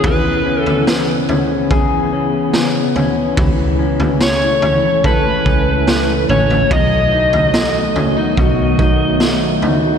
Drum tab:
SD |----o-------o---|----o-------o---|----o-------o---|
FT |o--o--o-o-----o-|o--o--o-o-----oo|o--o--o-o-----o-|
BD |o-------o-------|o-------o-o-----|o-------o-o-----|